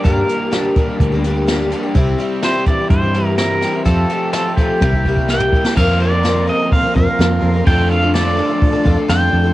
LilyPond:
<<
  \new Staff \with { instrumentName = "Pedal steel guitar" } { \time 4/4 \key c \mixolydian \tempo 4 = 126 bes'2 r2 | r4 c''8 d''8 c''4 bes'4 | a'4 a'8 g'4. g''4 | \key f \mixolydian f''8 d''4 ees''8 f''8 f''4. |
g''8 f''8 d''2 g''4 | }
  \new Staff \with { instrumentName = "Twelve-string acoustic guitar" } { \time 4/4 \key c \mixolydian <g, d g bes d' g'>8 <g bes d' g'>8 <g, d g bes d' g'>8 <g bes d' g'>8. <g bes d' g'>16 <g bes d' g'>8 <g, d g bes d' g'>8 <g bes d' g'>16 <g bes d' g'>16 | <c g c' e' g'>8 <g c' e' g'>8 <c g c' e' g'>8 <g c' e' g'>16 <c' e' g'>8 <c' e' g'>16 <g c' e' g'>8 <c g c' e' g'>8 <g c' e' g'>16 <c' e' g'>16 | <f a c' f' g'>8 <a c' f' g'>8 <f a c' f' g'>16 <c' f' g'>16 <a c' f' g'>8 <c g bes e' g'>16 <bes e' g'>16 <g bes e' g'>8 <c g bes e' g'>8 <g bes e' g'>16 <bes e' g'>16 | \key f \mixolydian <f c' f' bes'>8 <f c' f' bes'>16 <c' f' bes'>16 <f c' f' bes'>8 <f c' f' bes'>16 <c' f' bes'>8 <c' f' bes'>16 <f c' f' bes'>16 <c' f' bes'>16 <f c' f' bes'>8. <c' f' bes'>16 |
<f d' f' a'>8 <f d' f' a'>16 <d' f' a'>16 <f d' f' a'>8 <f d' f' a'>16 <d' f' a'>8 <d' f' a'>16 <f d' f' a'>16 <d' f' a'>16 <f d' f' a'>8. <d' f' a'>16 | }
  \new Staff \with { instrumentName = "Tonewheel organ" } { \time 4/4 \key c \mixolydian r1 | r1 | r1 | \key f \mixolydian <f bes c' bes'>1 |
<f a d' a'>1 | }
  \new Staff \with { instrumentName = "Overdriven electric guitar" } { \time 4/4 \key c \mixolydian <g, g bes d'>8 bes8 d'8 g8 bes8 g8 bes8 d'8 | c8 g8 c'8 e8 g8 e8 g8 c'8 | f8 a8 c'8 f8 c8 g8 bes8 e'8 | \key f \mixolydian <f, c f bes c' f'>1 |
<f a d' f'>1 | }
  \new Staff \with { instrumentName = "Picked electric bass" } { \clef bass \time 4/4 \key c \mixolydian g,8 r4. d,2 | c,8 r4. g,2 | f,8 r4. c,2 | \key f \mixolydian f,2 r8 f,16 r16 f,8 f,8 |
f,2 r8 f,16 r16 f,8 f,8 | }
  \new DrumStaff \with { instrumentName = "Drums" } \drummode { \time 4/4 <hh bd>8 hh8 <hh sn>8 <hh bd>8 <hh bd>8 hh8 <hh sn>8 hh8 | <hh bd>8 hh8 <hh sn>8 <hh bd>8 <hh bd>8 hh8 <hh sn>8 <hh sn>8 | <hh bd>8 hh8 <hh sn>8 <hh bd>8 <bd tommh>16 bd16 bd16 bd16 sn16 toml16 bd16 sn16 | <cymc bd>4 <hho sn>4 <hho bd>8 bd8 <hho sn>4 |
<hho bd>4 <hho sn>4 <hho bd>8 bd8 <hho sn>4 | }
>>